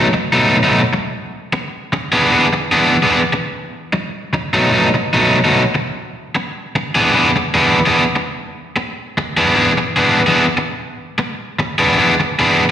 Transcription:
0.13 muted overdriven electric guitar stroke
0.33 B2 F#3 A3 D#4
0.63 B2 F#3 A3 D#4
0.93 muted overdriven electric guitar stroke
1.53 muted overdriven electric guitar stroke
1.93 muted overdriven electric guitar stroke
2.12 E3 B3 D4 G#4
2.30 E3 B3 D4 G#4
2.53 muted overdriven electric guitar stroke
2.72 E3 B3 D4 G#4
3.03 E3 B3 D4 G#4
3.33 muted overdriven electric guitar stroke
3.93 muted overdriven electric guitar stroke
4.33 muted overdriven electric guitar stroke
4.53 B2 F#3 A3 D#4
4.72 B2 F#3 A3 D#4
4.94 muted overdriven electric guitar stroke
5.13 B2 F#3 A3 D#4
5.44 B2 F#3 A3 D#4
5.75 muted overdriven electric guitar stroke
6.35 muted overdriven electric guitar stroke
6.76 muted overdriven electric guitar stroke
6.95 E3 B3 D4 G#4
7.14 E3 B3 D4 G#4
7.36 muted overdriven electric guitar stroke
7.54 E3 B3 D4 G#4
7.86 E3 B3 D4 G#4
8.16 muted overdriven electric guitar stroke
8.76 muted overdriven electric guitar stroke
9.18 muted overdriven electric guitar stroke
9.37 E3 B3 D4 G#4
9.56 E3 B3 D4 G#4
9.78 muted overdriven electric guitar stroke
9.96 E3 B3 D4 G#4
10.26 E3 B3 D4 G#4
10.57 muted overdriven electric guitar stroke
11.18 muted overdriven electric guitar stroke
11.59 muted overdriven electric guitar stroke
11.78 E3 B3 D4 G#4
11.98 E3 B3 D4 G#4
12.20 muted overdriven electric guitar stroke
12.39 E3 B3 D4 G#4

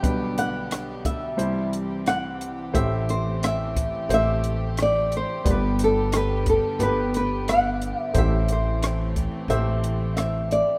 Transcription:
Already playing: G4 G5
0.02 B1 B2 D3 G3 B3 D4 B4, kick, closed hi-hat
0.38 F#5, closed hi-hat
0.71 cross-stick, closed hi-hat
1.05 E5, kick, closed hi-hat
1.37 C2 C3 E3 G3 C4 E4 G4 C5, closed hi-hat
1.73 closed hi-hat
2.06 F#5, cross-stick, closed hi-hat
2.41 closed hi-hat
2.73 A1 A2 A3 C4 G4 C5 E5, kick, closed hi-hat
3.09 C5, closed hi-hat
3.43 E5, cross-stick, closed hi-hat
3.76 kick, closed hi-hat
4.09 A1 A3 G4 C5, closed hi-hat
4.14 E5
4.44 closed hi-hat
4.77 cross-stick, closed hi-hat
4.82 D5
5.12 closed hi-hat
5.17 C5
5.44 G1 G2 D3 G3 B3 G4 D5, kick, closed hi-hat
5.50 B4
5.79 closed hi-hat
5.84 A4
6.12 cross-stick, closed hi-hat
6.17 B4
6.46 A4, kick, closed hi-hat
6.79 G1 B3 G4 B4, closed hi-hat
7.14 B4, closed hi-hat
7.48 F#5, cross-stick, closed hi-hat
7.82 closed hi-hat
8.00 E5
8.14 A1 A2 E3 A3 C4 G4 C5, kick, closed hi-hat
8.18 E5
8.48 C5, closed hi-hat
8.83 cross-stick, closed hi-hat
9.16 kick, closed hi-hat
9.48 A1 A3 G4 C5 E5, closed hi-hat
9.84 closed hi-hat
10.17 E5, cross-stick, closed hi-hat
10.51 D5, closed hi-hat

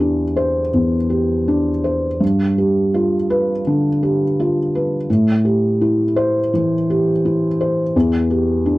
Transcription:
Already playing: E2 G4
0.00 D4
0.36 C5
0.74 E2
1.10 G4
1.48 D4
1.84 C5
2.20 G2
2.58 G4
2.94 F4
3.30 B4
3.67 D3
4.03 G4
4.40 F4
4.75 B4
5.10 A2
5.45 G4
5.81 E4
6.16 C5
6.53 E3
6.90 G4
7.25 E4
7.61 C5
7.96 E2
8.30 G4
8.66 D4

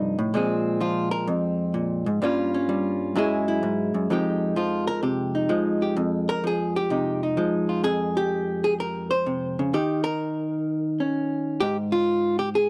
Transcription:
Already playing: G2 C3 F3 A3 D#4
0.19 A2
0.34 A#2 F3 G#3 C4 G#4
0.81 F3 F4
1.11 A#4
1.27 F2
1.74 A#2
2.06 G#2
2.22 G2 G3 A#3 C#4 F4
2.54 C#4
2.69 G3
3.16 F#2 F#3 G#3 E4 G#4
3.48 E4
3.63 G#2
3.94 F#2
4.10 F2 F3 G#3 D#4 G4
4.56 F3 F4
4.88 A#4
5.03 C3 G4
5.35 D#4
5.49 F3 G#3
5.82 G4
5.97 F2
6.29 A#4
6.44 F3 G#4
6.76 G4
6.90 C3 D#4
7.23 D#4
7.37 F3 G#3
7.69 F4
7.84 F2 G#4
8.17 G4
8.64 G#4
8.80 A#4
9.11 C5
9.26 C3
9.59 C#3
9.74 D#3 G4
10.04 A#4
11.00 C#4
11.60 G#2 G4
11.92 F4
12.39 G4
12.55 G#4

